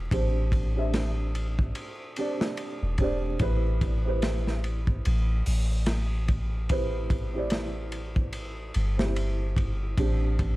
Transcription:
0.11 1.73 A1 loud
0.11 0.71 C4 medium
0.11 0.71 D4 medium
0.11 0.71 G4 medium
0.11 0.72 C5 medium
0.11 kick loud
0.11 ride medium
0.52 kick loud
0.52 ride medium
0.74 2.13 C4 medium
0.74 2.13 D4 medium
0.74 2.14 G4 medium
0.79 2.15 E5 medium
0.94 snare loud
0.94 ride medium
1.35 ride medium
1.59 kick medium
1.75 ride medium
2.16 2.95 C4 medium
2.16 2.96 D4 medium
2.16 2.96 G4 medium
2.16 2.96 D5 loud
2.16 ride medium
2.41 snare loud
2.57 ride medium
2.82 3.37 E1 medium
2.98 3.36 C4 medium
2.98 3.37 D4 medium
2.98 3.37 G4 medium
2.98 kick medium
2.98 ride medium
3.02 3.38 D5 loud
3.39 5.01 A1 loud
3.39 3.99 C4 medium
3.39 3.99 E4 medium
3.39 4.00 G4 medium
3.39 4.00 B4 loud
3.39 kick loud
3.39 ride medium
3.81 kick loud
3.81 ride medium
4.04 6.64 C4 medium
4.04 6.65 E4 medium
4.04 6.66 G4 medium
4.08 6.67 B4 loud
4.22 snare loud
4.22 ride medium
4.47 snare soft
4.64 ride medium
4.87 kick medium
5.05 5.43 A1 loud
5.05 ride medium
5.46 8.72 A1 medium
5.46 open hi-hat medium
5.86 snare loud
5.86 ride medium
6.28 kick loud
6.28 ride medium
6.69 7.28 C4 medium
6.69 7.29 E4 medium
6.69 7.29 G4 medium
6.69 7.30 B4 loud
6.69 kick loud
6.69 ride medium
7.10 kick loud
7.10 ride medium
7.33 8.93 C4 medium
7.33 8.94 E4 medium
7.33 8.94 G4 medium
7.37 8.95 D5 loud
7.50 snare loud
7.50 ride medium
7.92 ride medium
8.16 kick loud
8.33 ride medium
8.74 9.95 G1 loud
8.74 ride medium
8.97 9.93 C4 loud
8.97 9.94 E4 medium
8.97 9.95 G4 medium
8.97 snare loud
9.01 9.95 C5 loud
9.16 ride medium
9.57 kick loud
9.57 ride medium
9.97 10.56 A1 loud
9.97 10.56 C4 medium
9.97 10.56 D4 medium
9.97 10.56 G4 medium
9.97 10.56 C5 loud
9.97 kick loud
9.97 ride loud
10.39 kick loud
10.39 ride medium

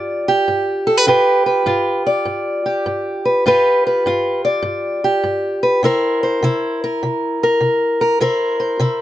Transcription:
0.00 0.44 G2 medium
0.00 1.07 F4 medium
0.00 0.28 G4 medium
0.00 0.86 D5 medium
0.28 1.08 G4 medium
0.48 1.04 G2 medium
0.87 0.97 A4 medium
0.97 1.07 B4 soft
1.07 1.63 G2 medium
1.07 1.66 F4 medium
1.07 2.65 G4 medium
1.07 1.46 B4 medium
1.46 2.06 B4 medium
1.66 2.22 G2 medium
1.66 3.43 F4 medium
2.06 3.25 D5 medium
2.25 2.82 G2 medium
2.66 3.47 G4 medium
2.86 3.41 G2 medium
3.25 3.43 B4 medium
3.46 4.01 G2 medium
3.46 4.05 F4 medium
3.46 5.04 G4 medium
3.46 3.85 B4 medium
3.87 4.44 B4 medium
4.06 4.61 G2 medium
4.06 5.82 F4 medium
4.45 5.62 D5 medium
4.62 5.19 G2 medium
5.04 5.84 G4 medium
5.24 5.79 G2 medium
5.63 5.81 B4 medium
5.83 6.38 C3 medium
5.83 6.43 E4 medium
5.83 6.83 A#4 medium
5.83 6.23 C5 medium
6.23 6.83 C5 medium
6.42 6.98 C3 medium
6.42 8.19 E4 medium
6.84 7.42 A#4 medium
7.03 7.58 C3 medium
7.43 8.00 A#4 medium
7.60 8.16 C3 medium
8.01 8.18 A#4 medium
8.20 8.76 C3 medium
8.20 8.79 E4 medium
8.20 9.02 A#4 medium
8.20 8.59 C5 medium
8.60 9.02 C5 medium
8.79 9.02 C3 medium
8.79 9.02 E4 medium

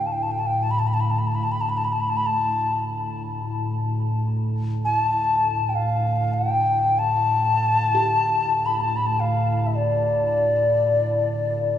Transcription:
0.00 11.78 D2 medium
0.00 11.78 A2 medium
0.06 0.14 A5 medium
0.12 0.24 G5 medium
0.22 0.33 A5 medium
0.31 0.40 G5 medium
0.39 0.48 A5 medium
0.47 0.64 G5 medium
0.63 0.72 A5 medium
0.71 0.80 B5 medium
0.79 0.88 A5 medium
0.87 0.95 B5 medium
0.94 1.02 A5 medium
1.00 1.12 B5 medium
1.10 1.20 A5 medium
1.19 1.29 B5 medium
1.27 1.36 A5 medium
1.35 1.45 B5 medium
1.44 1.53 A5 medium
1.52 1.63 B5 medium
1.61 1.71 A5 medium
1.69 1.79 B5 medium
1.77 1.86 A5 medium
1.84 1.94 B5 medium
1.92 2.02 A5 medium
2.00 2.11 B5 medium
2.09 2.18 A5 medium
2.17 2.27 B5 medium
2.26 2.83 A5 medium
4.85 5.71 A5 medium
5.69 5.77 G5 soft
5.75 6.35 F5 medium
6.34 7.00 G5 medium
6.99 8.67 A5 medium
7.95 11.78 G4 soft
8.66 8.82 B5 medium
8.81 8.98 A5 medium
8.96 9.08 B5 medium
9.06 9.21 A5 medium
9.20 9.68 F5 medium
9.66 9.77 E5 soft
9.75 11.78 D5 medium

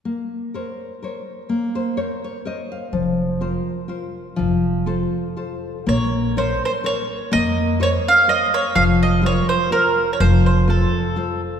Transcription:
0.05 0.53 A#3 soft
0.54 0.93 A#4 soft
0.54 0.94 C5 soft
0.54 0.94 C#5 soft
1.02 1.41 A#4 soft
1.02 1.41 C5 soft
1.02 1.42 C#5 soft
1.49 1.96 A#3 medium
1.75 1.96 C5 medium
1.97 2.36 A#4 soft
1.97 2.36 C5 soft
1.97 2.23 C#5 medium
2.24 2.45 C#5 soft
2.45 2.84 A#4 soft
2.45 2.85 C5 soft
2.45 2.84 C#5 soft
2.45 2.70 D#5 soft
2.72 2.93 F5 soft
2.93 3.56 F1 medium
2.93 3.40 F3 medium
3.41 3.80 F4 soft
3.41 3.80 A#4 soft
3.41 3.80 C5 soft
3.88 4.28 F4 soft
3.88 4.28 A#4 soft
3.88 4.28 C5 soft
4.36 5.03 F1 medium
4.36 4.85 F3 medium
4.86 5.27 F4 soft
4.86 5.27 A4 soft
4.86 5.27 C5 medium
5.37 5.77 F4 soft
5.37 5.77 A4 soft
5.37 5.78 C5 soft
5.87 6.51 A#1 medium
5.87 6.35 A#3 medium
5.87 6.34 C#5 medium
6.37 6.76 A#4 medium
6.37 6.76 C5 soft
6.37 6.62 C5 medium
6.37 6.76 C#5 medium
6.65 6.71 C5 medium
6.84 7.23 A#4 soft
6.84 7.23 C#5 medium
6.84 7.31 C#5 medium
7.32 7.96 F2 medium
7.32 7.79 A#3 medium
7.32 7.78 D#5 loud
7.80 8.19 A#4 medium
7.80 8.19 C5 soft
7.80 8.19 C#5 medium
7.80 7.90 C#5 medium
8.08 8.31 F5 medium
8.28 8.66 A#4 soft
8.28 8.67 C5 soft
8.28 8.67 C#5 soft
8.28 8.53 D#5 medium
8.54 8.77 C#5 medium
8.75 9.38 F1 medium
8.75 9.22 F3 medium
8.75 8.82 F5 medium
9.03 9.23 D#5 medium
9.21 9.61 F4 medium
9.21 9.61 A#4 medium
9.21 9.62 C5 medium
9.26 9.49 C#5 medium
9.49 9.70 C5 medium
9.71 10.10 F4 soft
9.71 10.10 A#4 soft
9.71 10.12 A#4 medium
9.71 10.11 C5 soft
10.13 10.19 C#5 medium
10.20 10.83 F1 loud
10.20 10.67 F3 medium
10.20 10.44 C5 medium
10.46 10.67 C5 medium
10.68 11.07 F4 medium
10.68 11.07 A4 soft
10.68 11.40 A4 medium
10.68 11.08 C5 medium
11.16 11.56 F4 soft
11.16 11.56 A4 soft
11.16 11.57 C5 soft

